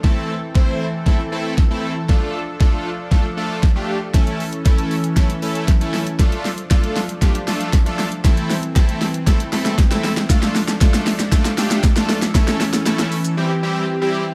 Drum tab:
HH |----------------|----------------|xxoxxxoxxxoxxxox|xxoxxxoxxxoxxxox|
SH |----------------|----------------|----------------|----------------|
SD |o---o---o---o---|o---o---o---o---|o---o---o---o-o-|o-o-o-o-o-o-o-o-|
BD |o---o---o---o---|o---o---o---o---|o---o---o---o---|o---o---o---o---|

HH |xxoxxxoxxxoxxxox|xxoxxxoxxxoxxxox|xxoxxxox--------|
SH |----------------|xxxxxxxxxxxxxxxx|xxxxxxxx--------|
SD |o-o-o-o-o-oooooo|oooooooooooooooo|oooooo----------|
BD |o---o---o---o---|o---o---o---o---|o---------------|